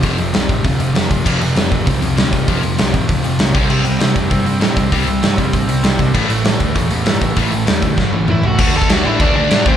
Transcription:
<<
  \new Staff \with { instrumentName = "Lead electric guitar" } { \time 4/4 \key f \lydian \tempo 4 = 196 r1 | r1 | r1 | r1 |
r1 | r1 | r2. <e' e''>8 <fis' fis''>8~ | <fis' fis''>8 <a' a''>8 <fis' fis''>8 <e' e''>8 <d' d''>8 <d' d''>4 <c' c''>8 | }
  \new Staff \with { instrumentName = "Distorted electric guitar" } { \clef bass \time 4/4 \key f \lydian <f, c f>8 <f, c f>8 <f, c f>8 <f, c f>8 <f, c f>8 <f, c f>8 <f, c f>8 <f, c f>8 | <f, c f>8 <f, c f>8 <f, c f>8 <f, c f>8 <f, c f>8 <f, c f>8 <f, c f>8 <f, c f>8 | <f, c f>8 <f, c f>8 <f, c f>8 <f, c f>8 <f, c f>8 <f, c f>8 <f, c f>8 <c g c'>8 | <c g c'>8 <c g c'>8 <c g c'>8 <c g c'>8 <c g c'>8 <c g c'>8 <c g c'>8 <c g c'>8 |
<c g c'>8 <c g c'>8 <c g c'>8 <c g c'>8 <c g c'>8 <c g c'>8 <c g c'>8 <c g c'>8 | <a, e a>8 <a, e a>8 <a, e a>8 <a, e a>8 <a, e a>8 <a, e a>8 <a, e a>8 <a, e a>8 | <a, e a>8 <a, e a>8 <a, e a>8 <a, e a>8 <a, e a>8 <a, e a>8 <a, e a>8 <a, e a>8 | <d a d'>4. <d a d'>4. <d a d'>8 <a, e a>8 | }
  \new Staff \with { instrumentName = "Distorted electric guitar" } { \clef bass \time 4/4 \key f \lydian <f, c f>8 <f, c>8 <f, c>8 <f, c>8 <f, c>8 <f, c>8 <f, c>8 <f, c>8 | <f, c f>8 <f, c>8 <f, c>8 <f, c>8 <f, c>8 <f, c>8 <f, c>8 <f, c>8 | <f, c f>8 <f, c>8 <f, c>8 <f, c>8 <f, c>8 <f, c>8 <f, c>8 <c g c'>8 | <c g c'>8 <c g>8 <c g>8 <c g>8 <c g>8 <c g>8 <c g>8 <c g>8 |
<c g c'>8 <c g>8 <c g>8 <c g>8 <c g>8 <c g>8 <c g>8 <c g>8 | <a, e a>8 <a, e>8 <a, e>8 <a, e>8 <a, e>8 <a, e>8 <a, e>8 <a, e>8 | <a, e a>8 <a, e>8 <a, e>8 <a, e>8 <a, e>8 <a, e>8 <a, e>8 <a, e>8 | <d a d'>8 <d a d'>8 <d a d'>8 <d a d'>8 <d a d'>8 <d a d'>8 <d a d'>8 <a, e a>8 | }
  \new Staff \with { instrumentName = "Overdriven electric guitar" } { \clef bass \time 4/4 \key f \lydian <f, c f>8 <f, c>8 <f, c>8 <f, c>8 <f, c>8 <f, c>8 <f, c>8 <f, c>8 | <f, c f>8 <f, c>8 <f, c>8 <f, c>8 <f, c>8 <f, c>8 <f, c>8 <f, c>8 | <f, c f>8 <f, c>8 <f, c>8 <f, c>8 <f, c>8 <f, c>8 <f, c>8 <c g c'>8 | <c g c'>8 <c g>8 <c g>8 <c g>8 <c g>8 <c g>8 <c g>8 <c g>8 |
<c g c'>8 <c g>8 <c g>8 <c g>8 <c g>8 <c g>8 <c g>8 <c g>8 | <a, e a>8 <a, e>8 <a, e>8 <a, e>8 <a, e>8 <a, e>8 <a, e>8 <a, e>8 | <a, e a>8 <a, e>8 <a, e>8 <a, e>8 <a, e>8 <a, e>8 <a, e>8 <a, e>8 | <d a d'>8 <d a d'>8 <d a d'>8 <d a d'>8 <d a d'>8 <d a d'>8 <d a d'>8 <a, e a>8 | }
  \new Staff \with { instrumentName = "Picked electric bass" } { \clef bass \time 4/4 \key f \lydian f,,8 f,,8 c,8 a,,8 d,8 f,,8 f,,8 f,,8 | f,,8 f,,8 f,,8 a,,8 c,8 c,8 d,8 f,,8 | f,,8 f,,8 c,8 a,,8 d,8 f,,8 b,,8 c,8 | c,8 c,8 c,8 f,8 g,,8 g,8 a,8 c,8 |
c,8 c,8 g,8 f,8 a,,8 c,8 c,8 c,8 | a,,8 a,,8 a,,8 d,8 e,,8 e,8 g,8 a,,8 | a,,8 a,,8 e,8 d,8 g,,8 a,,8 a,,8 a,,8 | d,4 d,8 a,8 d,8 d,8 a,8 a,,8 | }
  \new DrumStaff \with { instrumentName = "Drums" } \drummode { \time 4/4 <hho bd>8 hho8 <hho sn>8 <hho bd>8 <hho bd>8 hho8 <hho sn>8 <hho bd>8 | <cymc bd>8 hho8 <hho sn>8 <hho bd>8 <hho bd>8 hho8 <hho sn>8 <hho bd>8 | <hho bd>8 hho8 <hho sn>8 <hho bd>8 <hho bd>8 hho8 <hho sn>8 <hho bd>8 | cymc8 hho8 <hho sn>8 <hho bd>8 <hho bd>8 hho8 <hho sn>8 <hho bd>8 |
<hho bd>8 hho8 <hho sn>8 <hho bd>8 <hho bd>8 hho8 <hho sn>8 <hho bd>8 | <cymc bd>8 hho8 <hho sn>8 <hho bd>8 <hho bd>8 hho8 <hho sn>8 <hho bd>8 | <hho bd>8 hho8 <hho sn>8 <hho bd>8 <bd sn>8 tommh8 toml8 tomfh8 | <cymc bd>8. bd16 <cymc sn>4 <cymc bd>4 <cymc sn>8 bd8 | }
>>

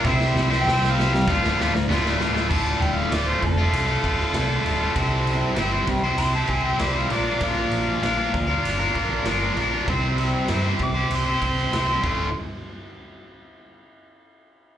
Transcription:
<<
  \new Staff \with { instrumentName = "Harmonica" } { \time 4/4 \key d \minor \tempo 4 = 97 e''4 g''8 f''4. r4 | a''8 g''16 f''16 d''16 c''16 a'8 a'2~ | a'4 r4 c'''16 a''16 gis''16 g''16 d''16 f''16 d''8 | f''2. r4 |
r4. d'''8 c'''2 | r1 | }
  \new Staff \with { instrumentName = "Overdriven electric guitar" } { \time 4/4 \key d \minor <c g c' e' g' c''>8. <c' e' g' c''>16 <c g c' e' g' c''>8 <c' e' g' c''>8 <d, d a f'>8 <a, d a f'>8 <d, a, d a f'>8 <a, d a f'>16 <d a f'>16 | <d, a, d a f'>4 <d, a, d a f'>16 <d a f'>8 <d a f'>8 <d a f'>16 <a, d a f'>8 <d, a, d a f'>16 <d a f'>16 <a, d a f'>16 <d a f'>16 | <c g c' e' g' c''>4 <c g c' e' g' c''>16 <c' e' g' c''>8 <c' e' g' c''>8 <c' e' g' c''>16 <c' e' g' c''>8 <c g c' e' g' c''>16 <c' e' g' c''>16 <bes, f bes d' f' bes'>16 <bes d' f' bes'>16 | <bes, f bes d' f' bes'>4 <bes, f bes d' f' bes'>16 <bes d' f' bes'>8 <bes d' f' bes'>8 <bes d' f' bes'>16 <bes d' f' bes'>8 <bes, f bes d' f' bes'>16 <bes d' f' bes'>16 <bes d' f' bes'>16 <bes d' f' bes'>16 |
<c g c' e' g' c''>4 <c g c' e' g' c''>16 <c' e' g' c''>8 <c' e' g' c''>8 <c' e' g' c''>16 <c' e' g' c''>8 <c g c' e' g' c''>16 <c' e' g' c''>16 <d, a, d a f'>8 | r1 | }
  \new Staff \with { instrumentName = "Picked electric bass" } { \clef bass \time 4/4 \key d \minor c,8 c,8 c,4 d,,8 d,,8 d,,8 d,,8 | d,,8 d,,8 d,,8 f,,8 c,8 d,,8 c,8 d,,8 | c,4 g,,8 c,8 c,8 c,8 c,8 bes,,8 | bes,,8 bes,,8 bes,,8 d,8 g,,8 bes,,8 g,,8 bes,,8 |
c,4 g,8 c,8 c,8 c,8 c,8 d,,8 | r1 | }
  \new DrumStaff \with { instrumentName = "Drums" } \drummode { \time 4/4 <bd sn>16 sn16 sn16 sn16 sn16 sn16 sn16 sn16 <bd sn>16 sn16 sn16 sn16 sn16 sn16 sn16 sn16 | <cymc bd>8 cymr8 <cymr sn>8 <bd cymr>8 cymr8 <bd cymr>16 sn16 <cymr sn>8 cymr8 | <bd cymr>8 cymr8 <cymr sn>8 <bd cymr>8 cymr8 <bd cymr>8 <cymr sn>8 cymr8 | <bd cymr>8 cymr8 <cymr sn>8 <bd cymr>8 cymr8 <bd cymr>8 <cymr sn>8 cymr8 |
<bd cymr>8 cymr8 <cymr sn>8 <bd cymr>8 cymr8 <bd cymr sn>16 sn16 <cymr sn>8 <cymc bd>8 | r4 r4 r4 r4 | }
>>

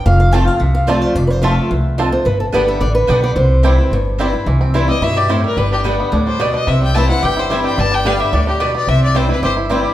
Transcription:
<<
  \new Staff \with { instrumentName = "Fiddle" } { \time 4/4 \key c \major \tempo 4 = 218 r1 | r1 | r1 | r1 |
r4. ees''8 e''8 d''8 c''8 bes'8 | b'8 g'8 r4. c''8 d''8 ees''8 | e''8 g''8 a''8 fis''8 g''8 c''8 e''8 g''8 | a''8 g''8 f''8 e''8 d''8 g'8 b'8 d''8 |
e''8 d''8 c''8 b'8 c''8 r4. | }
  \new Staff \with { instrumentName = "Steel-string acoustic guitar" } { \time 4/4 \key c \major f''8 f''8 g''8 f''4 f''8 d''8 c''8 | d''16. b'32 c''8 e''2 r8 c''8 | b'8 a'8 b'8 e''8 d''8 b'4 d''8 | c''2. r4 |
r1 | r1 | r1 | r1 |
r1 | }
  \new Staff \with { instrumentName = "Mandolin" } { \time 4/4 \key c \major r4 <c' f' c'' a''>8 r4. <c' f' c'' a''>8 r8 | r4 <c' f' c'' a''>8 r4. <c' f' c'' a''>8 r8 | r4 <b g' d'' g''>8 r4. <b g' d'' g''>8 r8 | r4 <c' e' c'' g''>8 r4. <c' e' c'' g''>8 r8 |
r4 <c' e' c'' g''>8 r4. <c' e' c'' g''>8 r8 | r4 <b g' d'' g''>8 r4. <b g' d'' g''>8 r8 | r4 <c' e' c'' g''>8 r4. <c' e' c'' g''>8 r8 | r4 <b g' d'' g''>8 r4. <b g' d'' g''>8 r8 |
r4 <c' e' c'' g''>8 r4. <c' e' c'' g''>8 r8 | }
  \new Staff \with { instrumentName = "Five-string banjo" } { \time 4/4 \key c \major r4 <a c' f'>8 r4. <a c' f'>8 r8 | r4 <a c' f'>8 r4. <a c' f'>8 r8 | r4 <g b d'>8 r4. <g b d'>8 r8 | r4 <g c' e'>8 r4. <g c' e'>8 r8 |
e8 c'8 e'8 g8 e'8 g'8 e'8 g8 | g8 d'8 g8 b8 d'8 g8 b8 d'8 | c'8 g8 c'8 e'8 g'8 e'8 g8 g'8 | g8 d'8 g8 g'8 g8 d'8 g'8 b8 |
c'4 c'8 e'8 g'8 e'8 g8 g'8 | }
  \new Staff \with { instrumentName = "Steel-string acoustic guitar" } { \clef bass \time 4/4 \key c \major << { r4 <f a c' f'>8 <c' f'>8 r4 <f a c' f'>4 | r4 <f a c' f'>4 r2 | r4 <d g b g'>4 r4 <d g b g'>4 | r4 <e g c' e'>8 <c' e'>8 r4 <e g c' e'>8 <c' e'>8 |
r4 <e g c' e'>8 <c' e'>8 r2 | r4 <d g b g'>4 r2 | r4 <e g c' e'>8 <c' e'>8 r4 <e g c' e'>4 | r4 <d g b g'>4 r2 |
r4 <e g c' e'>8 <c' e'>8 r4 <e g c' e'>4 | } \\ { f,2 c2 | f,2 e,4 f,4 | g,2 d2 | c2 g,2 |
c2 b,4 a,4 | g,2 a,4 b,4 | c2 g,2 | g,2 a,4 b,4 |
c2 g,2 | } >> }
  \new Staff \with { instrumentName = "Upright bass" } { \clef bass \time 4/4 \key c \major f,,2 c,2 | f,,2 c,2 | g,,4 g,,4 a,,4 b,,4 | c,2 g,,2 |
c,2 g,2 | g,,2 d,2 | c,2 g,,2 | g,,2 d,2 |
c,2 g,,2 | }
>>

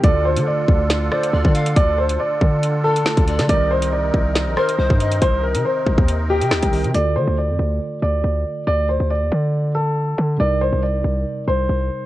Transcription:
<<
  \new Staff \with { instrumentName = "Pan flute" } { \time 4/4 \key d \phrygian \tempo 4 = 139 r2 r8 c''8 d''8 f''8 | r2 r8 a'4 d''8 | r2 r8 bes'8 c''8 ees''8 | r2 r8 g''4. |
r1 | r1 | r1 | }
  \new Staff \with { instrumentName = "Grand piano" } { \time 4/4 \key d \phrygian d''8 c''8 d''4. d''4. | d''8 c''8 d''4. a'4. | d''8 c''8 d''4. c''4. | c''8 bes'8 c''4. g'4. |
d''8 c''8 d''4. d''4. | d''8 c''8 d''4. a'4. | d''8 c''8 d''4. c''4. | }
  \new Staff \with { instrumentName = "Accordion" } { \time 4/4 \key d \phrygian <d d' f' a'>1~ | <d d' f' a'>1 | <c c' ees' bes'>1~ | <c c' ees' bes'>1 |
r1 | r1 | r1 | }
  \new Staff \with { instrumentName = "Tine electric piano" } { \time 4/4 \key d \phrygian <d a f' a'>1~ | <d a f' a'>2. <d a f' a'>4 | <ees c' g' bes'>1~ | <ees c' g' bes'>2.~ <ees c' g' bes'>8 <ees c' g' bes'>8 |
<d a f' a'>1~ | <d a f' a'>1 | <c g ees' bes'>1 | }
  \new Staff \with { instrumentName = "808-style bass" } { \clef bass \time 4/4 \key d \phrygian d,8. d8. d,4 r8 d,16 d8. | d,4 r8 d4.~ d16 d,8 d16 | c,4. c,8. bes,,16 r8 c,16 g,8. | c,8. c16 r8 c,16 ees,4 c16 ees,16 c,8 c16 |
d,8 d16 d,8 f,16 d,8 r8 d,8 d,8 r8 | d,8. d,8 ees,16 d2 d8 | c,8. c,8. c,8 r8 c,8 c,8 r8 | }
  \new DrumStaff \with { instrumentName = "Drums" } \drummode { \time 4/4 <hh bd>8. hh16 r8 bd8 <hh sn>8 ss16 hh16 r16 bd16 hh16 hh16 | <hh bd>8. hh16 r8 bd8 hh8. hh16 sn16 <hh bd>16 hh16 <hh sn>16 | <hh bd>8. hh16 r8 bd8 <hh sn>8 ss16 hh16 r16 bd16 hh16 hh16 | <hh bd>8. hh16 r8 bd16 bd16 hh8. hh16 <ss sn>16 <hh bd>16 hho16 hh16 |
hh4 r4 r4 r4 | r4 r4 r4 r4 | r4 r4 r4 r4 | }
>>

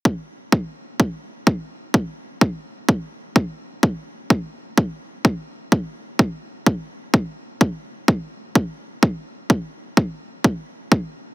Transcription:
\new DrumStaff \with { instrumentName = "Drums" } \drummode { \time 4/4 \tempo 4 = 127 bd4 bd4 bd4 bd4 | bd4 bd4 bd4 bd4 | bd4 bd4 bd4 bd4 | bd4 bd4 bd4 bd4 |
bd4 bd4 bd4 bd4 | bd4 bd4 bd4 bd4 | }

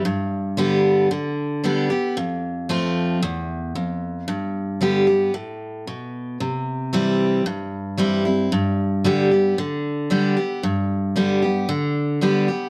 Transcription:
\new Staff \with { instrumentName = "Steel-string acoustic guitar" } { \time 4/4 \key g \major \tempo 4 = 113 << { r4 <d g b g'>4 r4 <d g b g'>8 <b g'>8 | r4 <f a c' f'>4 r2 | r4 <d g b g'>8 <b g'>8 r2 | r4 <e g c' e'>4 r4 <e g c' e'>8 <c' e'>8 |
r4 <d g b g'>8 <b g'>8 r4 <d g b g'>8 <b g'>8 | r4 <d g b g'>8 <b g'>8 r4 <d g b g'>8 <b g'>8 | } \\ { g,2 d2 | f,2 e,4 f,4 | g,2 a,4 b,4 | c2 g,2 |
g,2 d2 | g,2 d2 | } >> }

